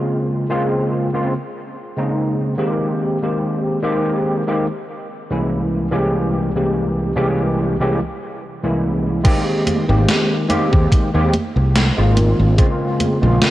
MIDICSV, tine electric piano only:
0, 0, Header, 1, 2, 480
1, 0, Start_track
1, 0, Key_signature, -4, "major"
1, 0, Tempo, 833333
1, 1488, Time_signature, 4, 2, 24, 8
1, 7778, End_track
2, 0, Start_track
2, 0, Title_t, "Tine electric piano"
2, 0, Program_c, 0, 4
2, 0, Note_on_c, 0, 49, 69
2, 0, Note_on_c, 0, 56, 61
2, 0, Note_on_c, 0, 58, 60
2, 0, Note_on_c, 0, 60, 58
2, 0, Note_on_c, 0, 65, 71
2, 259, Note_off_c, 0, 49, 0
2, 261, Note_off_c, 0, 56, 0
2, 262, Note_off_c, 0, 58, 0
2, 263, Note_off_c, 0, 60, 0
2, 264, Note_off_c, 0, 65, 0
2, 284, Note_on_c, 0, 49, 82
2, 285, Note_on_c, 0, 56, 80
2, 287, Note_on_c, 0, 58, 83
2, 290, Note_on_c, 0, 60, 81
2, 292, Note_on_c, 0, 65, 96
2, 626, Note_off_c, 0, 49, 0
2, 627, Note_off_c, 0, 56, 0
2, 627, Note_off_c, 0, 58, 0
2, 629, Note_off_c, 0, 60, 0
2, 630, Note_off_c, 0, 65, 0
2, 652, Note_on_c, 0, 49, 85
2, 655, Note_on_c, 0, 56, 76
2, 658, Note_on_c, 0, 58, 78
2, 660, Note_on_c, 0, 60, 78
2, 660, Note_on_c, 0, 65, 89
2, 759, Note_off_c, 0, 49, 0
2, 761, Note_off_c, 0, 56, 0
2, 762, Note_off_c, 0, 58, 0
2, 763, Note_off_c, 0, 60, 0
2, 764, Note_off_c, 0, 65, 0
2, 1134, Note_on_c, 0, 49, 76
2, 1136, Note_on_c, 0, 56, 67
2, 1137, Note_on_c, 0, 58, 68
2, 1139, Note_on_c, 0, 60, 70
2, 1142, Note_on_c, 0, 63, 82
2, 1459, Note_off_c, 0, 49, 0
2, 1460, Note_off_c, 0, 56, 0
2, 1461, Note_off_c, 0, 58, 0
2, 1462, Note_off_c, 0, 60, 0
2, 1463, Note_off_c, 0, 63, 0
2, 1481, Note_on_c, 0, 51, 82
2, 1485, Note_on_c, 0, 56, 74
2, 1487, Note_on_c, 0, 58, 73
2, 1489, Note_on_c, 0, 60, 74
2, 1492, Note_on_c, 0, 67, 89
2, 1825, Note_off_c, 0, 51, 0
2, 1826, Note_off_c, 0, 56, 0
2, 1827, Note_off_c, 0, 58, 0
2, 1829, Note_off_c, 0, 60, 0
2, 1830, Note_off_c, 0, 67, 0
2, 1854, Note_on_c, 0, 51, 64
2, 1857, Note_on_c, 0, 56, 63
2, 1858, Note_on_c, 0, 58, 61
2, 1862, Note_on_c, 0, 60, 62
2, 1863, Note_on_c, 0, 67, 71
2, 2179, Note_off_c, 0, 51, 0
2, 2181, Note_off_c, 0, 56, 0
2, 2181, Note_off_c, 0, 58, 0
2, 2183, Note_off_c, 0, 60, 0
2, 2184, Note_off_c, 0, 67, 0
2, 2201, Note_on_c, 0, 51, 88
2, 2203, Note_on_c, 0, 56, 80
2, 2206, Note_on_c, 0, 58, 79
2, 2208, Note_on_c, 0, 60, 82
2, 2210, Note_on_c, 0, 67, 94
2, 2545, Note_off_c, 0, 51, 0
2, 2545, Note_off_c, 0, 56, 0
2, 2547, Note_off_c, 0, 58, 0
2, 2548, Note_off_c, 0, 60, 0
2, 2549, Note_off_c, 0, 67, 0
2, 2576, Note_on_c, 0, 51, 83
2, 2577, Note_on_c, 0, 56, 78
2, 2579, Note_on_c, 0, 58, 81
2, 2582, Note_on_c, 0, 60, 80
2, 2583, Note_on_c, 0, 67, 90
2, 2681, Note_off_c, 0, 51, 0
2, 2682, Note_off_c, 0, 56, 0
2, 2683, Note_off_c, 0, 58, 0
2, 2684, Note_off_c, 0, 60, 0
2, 2685, Note_off_c, 0, 67, 0
2, 3055, Note_on_c, 0, 36, 81
2, 3056, Note_on_c, 0, 52, 74
2, 3058, Note_on_c, 0, 56, 67
2, 3060, Note_on_c, 0, 58, 70
2, 3061, Note_on_c, 0, 61, 74
2, 3064, Note_on_c, 0, 64, 81
2, 3380, Note_off_c, 0, 36, 0
2, 3380, Note_off_c, 0, 52, 0
2, 3381, Note_off_c, 0, 56, 0
2, 3383, Note_off_c, 0, 58, 0
2, 3383, Note_off_c, 0, 61, 0
2, 3384, Note_off_c, 0, 64, 0
2, 3403, Note_on_c, 0, 36, 80
2, 3403, Note_on_c, 0, 52, 78
2, 3405, Note_on_c, 0, 56, 75
2, 3408, Note_on_c, 0, 58, 76
2, 3408, Note_on_c, 0, 61, 76
2, 3410, Note_on_c, 0, 67, 91
2, 3745, Note_off_c, 0, 36, 0
2, 3746, Note_off_c, 0, 52, 0
2, 3746, Note_off_c, 0, 56, 0
2, 3748, Note_off_c, 0, 58, 0
2, 3748, Note_off_c, 0, 61, 0
2, 3749, Note_off_c, 0, 67, 0
2, 3775, Note_on_c, 0, 36, 66
2, 3777, Note_on_c, 0, 52, 63
2, 3778, Note_on_c, 0, 56, 65
2, 3780, Note_on_c, 0, 58, 63
2, 3783, Note_on_c, 0, 61, 61
2, 3784, Note_on_c, 0, 67, 77
2, 4100, Note_off_c, 0, 36, 0
2, 4101, Note_off_c, 0, 52, 0
2, 4101, Note_off_c, 0, 56, 0
2, 4102, Note_off_c, 0, 58, 0
2, 4104, Note_off_c, 0, 61, 0
2, 4104, Note_off_c, 0, 67, 0
2, 4120, Note_on_c, 0, 36, 94
2, 4122, Note_on_c, 0, 52, 80
2, 4122, Note_on_c, 0, 56, 82
2, 4125, Note_on_c, 0, 58, 81
2, 4126, Note_on_c, 0, 61, 84
2, 4128, Note_on_c, 0, 67, 94
2, 4464, Note_off_c, 0, 36, 0
2, 4465, Note_off_c, 0, 52, 0
2, 4465, Note_off_c, 0, 56, 0
2, 4466, Note_off_c, 0, 58, 0
2, 4467, Note_off_c, 0, 61, 0
2, 4468, Note_off_c, 0, 67, 0
2, 4492, Note_on_c, 0, 36, 87
2, 4493, Note_on_c, 0, 52, 80
2, 4495, Note_on_c, 0, 56, 79
2, 4497, Note_on_c, 0, 58, 78
2, 4498, Note_on_c, 0, 61, 84
2, 4501, Note_on_c, 0, 67, 97
2, 4599, Note_off_c, 0, 36, 0
2, 4600, Note_off_c, 0, 52, 0
2, 4601, Note_off_c, 0, 56, 0
2, 4602, Note_off_c, 0, 58, 0
2, 4602, Note_off_c, 0, 61, 0
2, 4604, Note_off_c, 0, 67, 0
2, 4971, Note_on_c, 0, 36, 79
2, 4973, Note_on_c, 0, 52, 71
2, 4974, Note_on_c, 0, 56, 69
2, 4975, Note_on_c, 0, 58, 73
2, 4978, Note_on_c, 0, 61, 68
2, 4979, Note_on_c, 0, 64, 83
2, 5298, Note_off_c, 0, 36, 0
2, 5299, Note_off_c, 0, 52, 0
2, 5300, Note_off_c, 0, 56, 0
2, 5300, Note_off_c, 0, 58, 0
2, 5301, Note_off_c, 0, 61, 0
2, 5302, Note_off_c, 0, 64, 0
2, 5318, Note_on_c, 0, 51, 88
2, 5320, Note_on_c, 0, 56, 83
2, 5322, Note_on_c, 0, 58, 81
2, 5324, Note_on_c, 0, 60, 79
2, 5326, Note_on_c, 0, 67, 98
2, 5663, Note_off_c, 0, 51, 0
2, 5664, Note_off_c, 0, 56, 0
2, 5665, Note_off_c, 0, 58, 0
2, 5666, Note_off_c, 0, 60, 0
2, 5667, Note_off_c, 0, 67, 0
2, 5692, Note_on_c, 0, 51, 76
2, 5695, Note_on_c, 0, 56, 69
2, 5696, Note_on_c, 0, 58, 68
2, 5698, Note_on_c, 0, 60, 67
2, 5701, Note_on_c, 0, 67, 82
2, 6019, Note_off_c, 0, 51, 0
2, 6020, Note_off_c, 0, 56, 0
2, 6020, Note_off_c, 0, 58, 0
2, 6021, Note_off_c, 0, 60, 0
2, 6023, Note_off_c, 0, 67, 0
2, 6039, Note_on_c, 0, 51, 96
2, 6042, Note_on_c, 0, 56, 88
2, 6044, Note_on_c, 0, 58, 88
2, 6045, Note_on_c, 0, 60, 91
2, 6048, Note_on_c, 0, 67, 107
2, 6383, Note_off_c, 0, 51, 0
2, 6385, Note_off_c, 0, 56, 0
2, 6386, Note_off_c, 0, 58, 0
2, 6386, Note_off_c, 0, 60, 0
2, 6388, Note_off_c, 0, 67, 0
2, 6413, Note_on_c, 0, 51, 94
2, 6415, Note_on_c, 0, 56, 86
2, 6419, Note_on_c, 0, 58, 86
2, 6420, Note_on_c, 0, 60, 86
2, 6422, Note_on_c, 0, 67, 104
2, 6520, Note_off_c, 0, 51, 0
2, 6521, Note_off_c, 0, 56, 0
2, 6523, Note_off_c, 0, 58, 0
2, 6523, Note_off_c, 0, 60, 0
2, 6524, Note_off_c, 0, 67, 0
2, 6893, Note_on_c, 0, 51, 84
2, 6895, Note_on_c, 0, 56, 75
2, 6898, Note_on_c, 0, 58, 78
2, 6900, Note_on_c, 0, 60, 74
2, 6901, Note_on_c, 0, 65, 92
2, 7219, Note_off_c, 0, 51, 0
2, 7220, Note_off_c, 0, 56, 0
2, 7221, Note_off_c, 0, 58, 0
2, 7222, Note_off_c, 0, 60, 0
2, 7223, Note_off_c, 0, 65, 0
2, 7240, Note_on_c, 0, 49, 86
2, 7244, Note_on_c, 0, 56, 82
2, 7246, Note_on_c, 0, 58, 80
2, 7248, Note_on_c, 0, 60, 81
2, 7249, Note_on_c, 0, 65, 98
2, 7584, Note_off_c, 0, 49, 0
2, 7586, Note_off_c, 0, 56, 0
2, 7587, Note_off_c, 0, 58, 0
2, 7588, Note_off_c, 0, 60, 0
2, 7588, Note_off_c, 0, 65, 0
2, 7613, Note_on_c, 0, 49, 75
2, 7613, Note_on_c, 0, 56, 70
2, 7616, Note_on_c, 0, 58, 68
2, 7620, Note_on_c, 0, 60, 70
2, 7621, Note_on_c, 0, 65, 80
2, 7778, Note_off_c, 0, 49, 0
2, 7778, Note_off_c, 0, 56, 0
2, 7778, Note_off_c, 0, 58, 0
2, 7778, Note_off_c, 0, 60, 0
2, 7778, Note_off_c, 0, 65, 0
2, 7778, End_track
0, 0, End_of_file